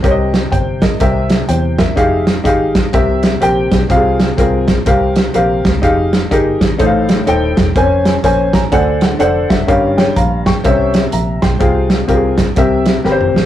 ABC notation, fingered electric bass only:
X:1
M:4/4
L:1/8
Q:"Swing" 1/4=124
K:Fm
V:1 name="Fingered electric bass" clef=bass
C,,2 G,,,2 C,,2 =E,,2 | F,,,2 A,,,2 C,,2 B,,, =B,,, | C,,2 C,,2 C,,2 B,,, D,, | F,,,2 G,,, A,,, =A,,,2 E,,, =E,,, |
F,,,2 B,,,2 =D,,2 F,,, ^F,,, | G,,,2 B,,,2 C,,2 B,,, =B,,, | C,,2 C,,2 C,,2 A,,, =A,,, |]